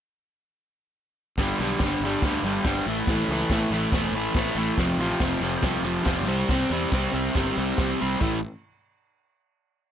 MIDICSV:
0, 0, Header, 1, 4, 480
1, 0, Start_track
1, 0, Tempo, 424028
1, 1561, Time_signature, 4, 2, 24, 8
1, 4925, Tempo, 429185
1, 11149, End_track
2, 0, Start_track
2, 0, Title_t, "Overdriven electric guitar"
2, 0, Program_c, 0, 29
2, 1568, Note_on_c, 0, 43, 97
2, 1577, Note_on_c, 0, 50, 105
2, 1582, Note_on_c, 0, 55, 104
2, 1806, Note_off_c, 0, 43, 0
2, 1820, Note_off_c, 0, 50, 0
2, 1820, Note_on_c, 0, 43, 81
2, 1825, Note_off_c, 0, 55, 0
2, 1834, Note_on_c, 0, 50, 90
2, 1839, Note_on_c, 0, 55, 86
2, 2057, Note_off_c, 0, 43, 0
2, 2071, Note_on_c, 0, 43, 81
2, 2072, Note_off_c, 0, 50, 0
2, 2083, Note_off_c, 0, 55, 0
2, 2086, Note_on_c, 0, 50, 92
2, 2102, Note_on_c, 0, 55, 94
2, 2286, Note_off_c, 0, 43, 0
2, 2300, Note_on_c, 0, 43, 82
2, 2301, Note_off_c, 0, 50, 0
2, 2312, Note_off_c, 0, 55, 0
2, 2315, Note_on_c, 0, 50, 87
2, 2326, Note_on_c, 0, 55, 107
2, 2520, Note_off_c, 0, 43, 0
2, 2530, Note_off_c, 0, 50, 0
2, 2533, Note_on_c, 0, 43, 96
2, 2544, Note_on_c, 0, 50, 96
2, 2546, Note_off_c, 0, 55, 0
2, 2560, Note_on_c, 0, 55, 99
2, 2745, Note_off_c, 0, 43, 0
2, 2758, Note_on_c, 0, 43, 84
2, 2762, Note_off_c, 0, 55, 0
2, 2768, Note_off_c, 0, 50, 0
2, 2776, Note_on_c, 0, 55, 98
2, 2781, Note_on_c, 0, 50, 90
2, 2984, Note_off_c, 0, 43, 0
2, 2996, Note_off_c, 0, 50, 0
2, 2997, Note_on_c, 0, 43, 86
2, 3004, Note_off_c, 0, 55, 0
2, 3010, Note_on_c, 0, 50, 92
2, 3017, Note_on_c, 0, 55, 97
2, 3223, Note_off_c, 0, 43, 0
2, 3230, Note_off_c, 0, 50, 0
2, 3233, Note_off_c, 0, 55, 0
2, 3252, Note_on_c, 0, 45, 86
2, 3263, Note_on_c, 0, 52, 103
2, 3267, Note_on_c, 0, 57, 107
2, 3478, Note_off_c, 0, 45, 0
2, 3488, Note_off_c, 0, 52, 0
2, 3491, Note_on_c, 0, 45, 100
2, 3502, Note_on_c, 0, 52, 106
2, 3508, Note_off_c, 0, 57, 0
2, 3512, Note_on_c, 0, 57, 100
2, 3727, Note_off_c, 0, 45, 0
2, 3741, Note_on_c, 0, 45, 91
2, 3743, Note_off_c, 0, 52, 0
2, 3756, Note_on_c, 0, 52, 98
2, 3759, Note_off_c, 0, 57, 0
2, 3764, Note_on_c, 0, 57, 93
2, 3972, Note_off_c, 0, 45, 0
2, 3973, Note_off_c, 0, 52, 0
2, 3986, Note_on_c, 0, 45, 80
2, 3987, Note_on_c, 0, 52, 87
2, 3995, Note_off_c, 0, 57, 0
2, 4000, Note_on_c, 0, 57, 89
2, 4199, Note_off_c, 0, 45, 0
2, 4203, Note_off_c, 0, 52, 0
2, 4212, Note_on_c, 0, 45, 89
2, 4217, Note_on_c, 0, 52, 100
2, 4220, Note_off_c, 0, 57, 0
2, 4234, Note_on_c, 0, 57, 107
2, 4436, Note_off_c, 0, 45, 0
2, 4450, Note_on_c, 0, 45, 95
2, 4452, Note_off_c, 0, 52, 0
2, 4465, Note_on_c, 0, 52, 102
2, 4466, Note_off_c, 0, 57, 0
2, 4480, Note_on_c, 0, 57, 110
2, 4686, Note_off_c, 0, 45, 0
2, 4699, Note_off_c, 0, 52, 0
2, 4700, Note_off_c, 0, 57, 0
2, 4700, Note_on_c, 0, 45, 74
2, 4713, Note_on_c, 0, 52, 94
2, 4714, Note_on_c, 0, 57, 89
2, 4915, Note_off_c, 0, 45, 0
2, 4929, Note_on_c, 0, 45, 90
2, 4930, Note_off_c, 0, 52, 0
2, 4943, Note_on_c, 0, 52, 83
2, 4944, Note_off_c, 0, 57, 0
2, 4957, Note_on_c, 0, 57, 94
2, 5149, Note_off_c, 0, 45, 0
2, 5162, Note_off_c, 0, 52, 0
2, 5163, Note_on_c, 0, 45, 90
2, 5174, Note_off_c, 0, 57, 0
2, 5175, Note_on_c, 0, 52, 89
2, 5187, Note_on_c, 0, 57, 96
2, 5387, Note_off_c, 0, 45, 0
2, 5393, Note_off_c, 0, 52, 0
2, 5399, Note_off_c, 0, 57, 0
2, 5413, Note_on_c, 0, 41, 88
2, 5423, Note_on_c, 0, 48, 92
2, 5431, Note_on_c, 0, 53, 105
2, 5627, Note_off_c, 0, 41, 0
2, 5641, Note_on_c, 0, 41, 89
2, 5646, Note_off_c, 0, 48, 0
2, 5649, Note_off_c, 0, 53, 0
2, 5659, Note_on_c, 0, 48, 85
2, 5663, Note_on_c, 0, 53, 104
2, 5871, Note_off_c, 0, 41, 0
2, 5885, Note_on_c, 0, 41, 77
2, 5892, Note_off_c, 0, 48, 0
2, 5901, Note_off_c, 0, 53, 0
2, 5905, Note_on_c, 0, 48, 81
2, 5914, Note_on_c, 0, 53, 93
2, 6103, Note_off_c, 0, 41, 0
2, 6116, Note_on_c, 0, 41, 102
2, 6118, Note_off_c, 0, 48, 0
2, 6126, Note_off_c, 0, 53, 0
2, 6131, Note_on_c, 0, 48, 100
2, 6139, Note_on_c, 0, 53, 93
2, 6342, Note_off_c, 0, 41, 0
2, 6353, Note_off_c, 0, 48, 0
2, 6356, Note_on_c, 0, 41, 89
2, 6366, Note_off_c, 0, 53, 0
2, 6366, Note_on_c, 0, 48, 99
2, 6379, Note_on_c, 0, 53, 124
2, 6582, Note_off_c, 0, 41, 0
2, 6589, Note_off_c, 0, 48, 0
2, 6595, Note_on_c, 0, 41, 88
2, 6601, Note_off_c, 0, 53, 0
2, 6602, Note_on_c, 0, 48, 96
2, 6614, Note_on_c, 0, 53, 105
2, 6802, Note_off_c, 0, 41, 0
2, 6816, Note_on_c, 0, 41, 94
2, 6818, Note_off_c, 0, 53, 0
2, 6821, Note_off_c, 0, 48, 0
2, 6832, Note_on_c, 0, 53, 102
2, 6835, Note_on_c, 0, 48, 97
2, 7052, Note_off_c, 0, 41, 0
2, 7054, Note_off_c, 0, 48, 0
2, 7060, Note_off_c, 0, 53, 0
2, 7067, Note_on_c, 0, 48, 91
2, 7080, Note_on_c, 0, 55, 109
2, 7092, Note_on_c, 0, 60, 112
2, 7316, Note_off_c, 0, 48, 0
2, 7318, Note_off_c, 0, 55, 0
2, 7329, Note_on_c, 0, 48, 89
2, 7330, Note_off_c, 0, 60, 0
2, 7332, Note_on_c, 0, 55, 89
2, 7343, Note_on_c, 0, 60, 111
2, 7554, Note_off_c, 0, 48, 0
2, 7565, Note_off_c, 0, 55, 0
2, 7567, Note_on_c, 0, 48, 85
2, 7576, Note_off_c, 0, 60, 0
2, 7578, Note_on_c, 0, 55, 94
2, 7590, Note_on_c, 0, 60, 96
2, 7784, Note_off_c, 0, 48, 0
2, 7797, Note_on_c, 0, 48, 97
2, 7804, Note_off_c, 0, 55, 0
2, 7811, Note_off_c, 0, 60, 0
2, 7818, Note_on_c, 0, 55, 91
2, 7825, Note_on_c, 0, 60, 99
2, 8013, Note_off_c, 0, 48, 0
2, 8027, Note_on_c, 0, 48, 93
2, 8029, Note_off_c, 0, 55, 0
2, 8035, Note_off_c, 0, 60, 0
2, 8043, Note_on_c, 0, 55, 99
2, 8048, Note_on_c, 0, 60, 117
2, 8269, Note_off_c, 0, 48, 0
2, 8282, Note_on_c, 0, 48, 93
2, 8291, Note_off_c, 0, 55, 0
2, 8293, Note_off_c, 0, 60, 0
2, 8305, Note_on_c, 0, 55, 115
2, 8306, Note_on_c, 0, 60, 103
2, 8515, Note_off_c, 0, 48, 0
2, 8526, Note_off_c, 0, 55, 0
2, 8528, Note_off_c, 0, 60, 0
2, 8528, Note_on_c, 0, 48, 86
2, 8539, Note_on_c, 0, 55, 92
2, 8541, Note_on_c, 0, 60, 105
2, 8767, Note_off_c, 0, 48, 0
2, 8768, Note_off_c, 0, 55, 0
2, 8780, Note_on_c, 0, 48, 93
2, 8781, Note_off_c, 0, 60, 0
2, 8782, Note_on_c, 0, 55, 93
2, 8794, Note_on_c, 0, 60, 102
2, 9003, Note_off_c, 0, 48, 0
2, 9007, Note_off_c, 0, 55, 0
2, 9008, Note_off_c, 0, 60, 0
2, 9016, Note_on_c, 0, 48, 89
2, 9020, Note_on_c, 0, 55, 88
2, 9022, Note_on_c, 0, 60, 101
2, 9229, Note_off_c, 0, 48, 0
2, 9234, Note_on_c, 0, 45, 98
2, 9237, Note_off_c, 0, 55, 0
2, 9238, Note_off_c, 0, 60, 0
2, 9248, Note_on_c, 0, 52, 96
2, 9254, Note_on_c, 0, 57, 97
2, 9431, Note_off_c, 0, 45, 0
2, 9438, Note_off_c, 0, 52, 0
2, 9441, Note_off_c, 0, 57, 0
2, 11149, End_track
3, 0, Start_track
3, 0, Title_t, "Fingered electric bass"
3, 0, Program_c, 1, 33
3, 1555, Note_on_c, 1, 31, 100
3, 1717, Note_off_c, 1, 31, 0
3, 1802, Note_on_c, 1, 35, 88
3, 1961, Note_off_c, 1, 35, 0
3, 2034, Note_on_c, 1, 31, 92
3, 2196, Note_off_c, 1, 31, 0
3, 2265, Note_on_c, 1, 31, 94
3, 2430, Note_off_c, 1, 31, 0
3, 2517, Note_on_c, 1, 38, 97
3, 2678, Note_off_c, 1, 38, 0
3, 2747, Note_on_c, 1, 31, 94
3, 2911, Note_off_c, 1, 31, 0
3, 3001, Note_on_c, 1, 31, 91
3, 3161, Note_off_c, 1, 31, 0
3, 3241, Note_on_c, 1, 33, 88
3, 3400, Note_off_c, 1, 33, 0
3, 3482, Note_on_c, 1, 33, 101
3, 3641, Note_off_c, 1, 33, 0
3, 3714, Note_on_c, 1, 37, 95
3, 3876, Note_off_c, 1, 37, 0
3, 3959, Note_on_c, 1, 33, 92
3, 4120, Note_off_c, 1, 33, 0
3, 4191, Note_on_c, 1, 33, 87
3, 4355, Note_off_c, 1, 33, 0
3, 4440, Note_on_c, 1, 28, 83
3, 4601, Note_off_c, 1, 28, 0
3, 4662, Note_on_c, 1, 33, 97
3, 4830, Note_off_c, 1, 33, 0
3, 4921, Note_on_c, 1, 33, 97
3, 5081, Note_off_c, 1, 33, 0
3, 5147, Note_on_c, 1, 33, 91
3, 5311, Note_off_c, 1, 33, 0
3, 5400, Note_on_c, 1, 29, 104
3, 5559, Note_off_c, 1, 29, 0
3, 5618, Note_on_c, 1, 33, 100
3, 5785, Note_off_c, 1, 33, 0
3, 5886, Note_on_c, 1, 29, 95
3, 6043, Note_off_c, 1, 29, 0
3, 6104, Note_on_c, 1, 29, 96
3, 6269, Note_off_c, 1, 29, 0
3, 6343, Note_on_c, 1, 36, 85
3, 6508, Note_off_c, 1, 36, 0
3, 6574, Note_on_c, 1, 29, 96
3, 6742, Note_off_c, 1, 29, 0
3, 6830, Note_on_c, 1, 29, 100
3, 7084, Note_off_c, 1, 29, 0
3, 7084, Note_on_c, 1, 36, 97
3, 7242, Note_off_c, 1, 36, 0
3, 7315, Note_on_c, 1, 36, 105
3, 7476, Note_off_c, 1, 36, 0
3, 7551, Note_on_c, 1, 40, 96
3, 7714, Note_off_c, 1, 40, 0
3, 7799, Note_on_c, 1, 36, 98
3, 7960, Note_off_c, 1, 36, 0
3, 8035, Note_on_c, 1, 36, 99
3, 8197, Note_off_c, 1, 36, 0
3, 8285, Note_on_c, 1, 31, 92
3, 8444, Note_off_c, 1, 31, 0
3, 8529, Note_on_c, 1, 36, 103
3, 8687, Note_off_c, 1, 36, 0
3, 8762, Note_on_c, 1, 36, 94
3, 8922, Note_off_c, 1, 36, 0
3, 9030, Note_on_c, 1, 36, 96
3, 9181, Note_off_c, 1, 36, 0
3, 9242, Note_on_c, 1, 33, 95
3, 9466, Note_off_c, 1, 33, 0
3, 11149, End_track
4, 0, Start_track
4, 0, Title_t, "Drums"
4, 1555, Note_on_c, 9, 49, 57
4, 1558, Note_on_c, 9, 38, 93
4, 1560, Note_on_c, 9, 36, 100
4, 1668, Note_off_c, 9, 49, 0
4, 1672, Note_off_c, 9, 38, 0
4, 1673, Note_off_c, 9, 36, 0
4, 2027, Note_on_c, 9, 49, 61
4, 2031, Note_on_c, 9, 38, 111
4, 2037, Note_on_c, 9, 36, 95
4, 2141, Note_off_c, 9, 49, 0
4, 2144, Note_off_c, 9, 38, 0
4, 2151, Note_off_c, 9, 36, 0
4, 2516, Note_on_c, 9, 36, 107
4, 2516, Note_on_c, 9, 49, 67
4, 2520, Note_on_c, 9, 38, 112
4, 2630, Note_off_c, 9, 36, 0
4, 2630, Note_off_c, 9, 49, 0
4, 2633, Note_off_c, 9, 38, 0
4, 2992, Note_on_c, 9, 49, 64
4, 2995, Note_on_c, 9, 38, 123
4, 2996, Note_on_c, 9, 36, 109
4, 3105, Note_off_c, 9, 49, 0
4, 3108, Note_off_c, 9, 38, 0
4, 3109, Note_off_c, 9, 36, 0
4, 3479, Note_on_c, 9, 36, 110
4, 3479, Note_on_c, 9, 49, 62
4, 3483, Note_on_c, 9, 38, 106
4, 3593, Note_off_c, 9, 36, 0
4, 3593, Note_off_c, 9, 49, 0
4, 3596, Note_off_c, 9, 38, 0
4, 3959, Note_on_c, 9, 36, 95
4, 3967, Note_on_c, 9, 49, 58
4, 3971, Note_on_c, 9, 38, 106
4, 4072, Note_off_c, 9, 36, 0
4, 4081, Note_off_c, 9, 49, 0
4, 4084, Note_off_c, 9, 38, 0
4, 4441, Note_on_c, 9, 36, 111
4, 4444, Note_on_c, 9, 49, 61
4, 4447, Note_on_c, 9, 38, 108
4, 4554, Note_off_c, 9, 36, 0
4, 4557, Note_off_c, 9, 49, 0
4, 4560, Note_off_c, 9, 38, 0
4, 4922, Note_on_c, 9, 36, 111
4, 4927, Note_on_c, 9, 49, 57
4, 4931, Note_on_c, 9, 38, 117
4, 5034, Note_off_c, 9, 36, 0
4, 5039, Note_off_c, 9, 49, 0
4, 5043, Note_off_c, 9, 38, 0
4, 5402, Note_on_c, 9, 36, 96
4, 5405, Note_on_c, 9, 49, 58
4, 5409, Note_on_c, 9, 38, 105
4, 5513, Note_off_c, 9, 36, 0
4, 5517, Note_off_c, 9, 49, 0
4, 5520, Note_off_c, 9, 38, 0
4, 5874, Note_on_c, 9, 49, 54
4, 5877, Note_on_c, 9, 38, 115
4, 5878, Note_on_c, 9, 36, 108
4, 5985, Note_off_c, 9, 49, 0
4, 5989, Note_off_c, 9, 38, 0
4, 5990, Note_off_c, 9, 36, 0
4, 6349, Note_on_c, 9, 49, 68
4, 6352, Note_on_c, 9, 38, 102
4, 6354, Note_on_c, 9, 36, 110
4, 6461, Note_off_c, 9, 49, 0
4, 6464, Note_off_c, 9, 38, 0
4, 6465, Note_off_c, 9, 36, 0
4, 6836, Note_on_c, 9, 49, 61
4, 6837, Note_on_c, 9, 36, 115
4, 6840, Note_on_c, 9, 38, 117
4, 6948, Note_off_c, 9, 49, 0
4, 6949, Note_off_c, 9, 36, 0
4, 6952, Note_off_c, 9, 38, 0
4, 7319, Note_on_c, 9, 36, 99
4, 7319, Note_on_c, 9, 49, 63
4, 7322, Note_on_c, 9, 38, 109
4, 7430, Note_off_c, 9, 49, 0
4, 7431, Note_off_c, 9, 36, 0
4, 7434, Note_off_c, 9, 38, 0
4, 7797, Note_on_c, 9, 49, 57
4, 7800, Note_on_c, 9, 36, 121
4, 7801, Note_on_c, 9, 38, 104
4, 7909, Note_off_c, 9, 49, 0
4, 7912, Note_off_c, 9, 36, 0
4, 7913, Note_off_c, 9, 38, 0
4, 8280, Note_on_c, 9, 49, 55
4, 8282, Note_on_c, 9, 36, 116
4, 8283, Note_on_c, 9, 38, 113
4, 8392, Note_off_c, 9, 49, 0
4, 8394, Note_off_c, 9, 36, 0
4, 8395, Note_off_c, 9, 38, 0
4, 8756, Note_on_c, 9, 49, 58
4, 8759, Note_on_c, 9, 38, 118
4, 8762, Note_on_c, 9, 36, 121
4, 8867, Note_off_c, 9, 49, 0
4, 8871, Note_off_c, 9, 38, 0
4, 8874, Note_off_c, 9, 36, 0
4, 9235, Note_on_c, 9, 57, 91
4, 9243, Note_on_c, 9, 36, 102
4, 9347, Note_off_c, 9, 57, 0
4, 9354, Note_off_c, 9, 36, 0
4, 11149, End_track
0, 0, End_of_file